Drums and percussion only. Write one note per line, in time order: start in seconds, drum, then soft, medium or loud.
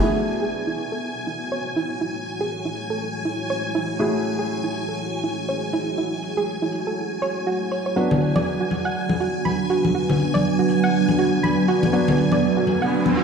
0.28 open hi-hat loud
0.77 open hi-hat medium
1.27 open hi-hat loud
1.76 open hi-hat medium
2.26 open hi-hat loud
2.76 open hi-hat loud
3.25 open hi-hat loud
3.75 open hi-hat loud
4.24 open hi-hat loud
4.74 open hi-hat loud
5.23 open hi-hat loud
5.73 open hi-hat loud
6.23 open hi-hat loud
6.72 open hi-hat loud
7.22 open hi-hat loud
7.71 open hi-hat loud
8.11 low conga medium
8.21 open hi-hat loud
8.36 high conga medium
8.71 open hi-hat medium
8.71 high conga medium
9.09 high conga medium
9.20 open hi-hat loud
9.45 high conga medium
9.70 open hi-hat medium
9.85 high conga medium
10.10 low conga medium
10.19 open hi-hat medium
10.35 high conga medium
10.69 open hi-hat medium
11.09 high conga medium
11.19 open hi-hat medium
11.44 high conga medium
11.68 open hi-hat loud
11.83 high conga medium
12.08 low conga medium
12.18 open hi-hat medium
12.32 high conga medium
12.67 open hi-hat medium
12.67 high conga medium
13.06 high conga medium
13.17 open hi-hat medium